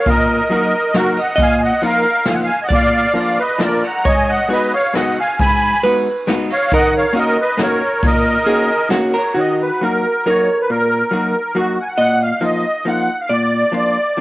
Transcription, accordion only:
0.07 A#4 D#5
0.51 A#4 D#5
0.96 F#4 A#4
1.19 D#5 F#5
1.41 F5 G#5
1.62 D#5 F#5
1.85 A#4 F5
2.28 F5 G#5
2.34 F#5
2.43 F5 G#5
2.63 D#5 F#5
2.72 D5 F5
3.19 D5 F5
3.39 B4 D#5
3.63 A#4 D5
3.85 F#5 A#5
4.07 D#5 G#5
4.28 D#5 F#5
4.52 B4 D#5
4.74 C#5 F5
4.96 D#5 F#5
5.19 F5 G#5
5.40 G#5 B5
6.53 C#5 F5
6.74 D#5 F#5
6.97 C#5 F5
7.18 A#4 D#5
7.41 B4 D#5
7.62 A#4 C#5
8.05 A#4 D#5
9.18 C#5
9.39 D#5
9.62 B4
9.84 A#4
10.29 C#5
10.61 B4
10.71 A#4
11.14 A#4
11.57 F#4
11.80 F#5 G#5
11.88 F#5
12.00 F#5
12.22 F5
12.43 D#5
12.88 F#5
13.21 F5
13.33 D5
13.77 D5

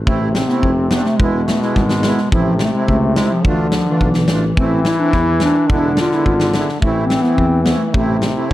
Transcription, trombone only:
0.06 C3
1.19 B2
2.32 C3
3.44 D3
4.57 E3
5.68 D3
6.82 E3
7.94 C3
8.49 D3

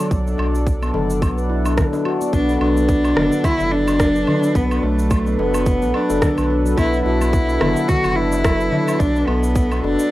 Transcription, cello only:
2.33 D4
2.61 D4
3.44 E4
3.72 D4
4.56 B3
4.83 A3
5.39 B3
5.95 D4
6.77 E4
7.05 E4
7.89 F#4
8.16 E4
9.00 D4
9.27 B3
9.82 D4

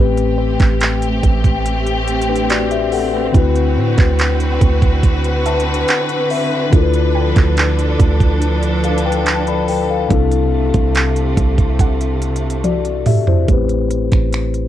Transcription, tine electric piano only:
Already playing: A2 A3 C4
0.00 G4 B4
2.29 D4 B4
2.50 F#4 D5
2.72 G4 E5
2.93 A4 F#5
3.14 B4 G5
3.32 D3 C4 E4
3.37 F#4 B4
5.46 A5
5.89 F#5
6.31 E5
6.70 D3 D4 E4 F4
6.75 A4 A#4
6.83 B4
8.85 A4 F5
9.06 B4 G5
9.27 A5
9.48 D5 B5
9.69 B4 G5
9.90 A4 F5
10.08 C3 C4 D4
10.12 E4 A4
12.65 F#4 D5
13.07 G4 E5
13.28 E4 C5
13.46 A2 A3 B3
13.51 G4 B4
13.56 C4

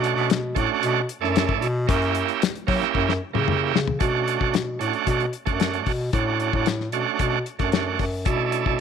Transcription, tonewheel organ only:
Already playing: A3 C#4 D4 F#4
0.55 A3 C#4 D4 F#4
1.21 A3 C#4 D4 E4
1.87 A#3 C#4 E4 G4
2.67 A#3 C#4 E4 G4
3.33 A#3 C#4 E4 G4
3.99 A3 C#4 D4 F#4
4.79 A3 C#4 D4 F#4
5.45 A3 C#4 D4 F#4
6.13 A3 C#4 D4 F#4
6.93 A3 C#4 D4 F#4
7.59 A3 C#4 D4 F#4
8.25 A3 C#4 D4 E4

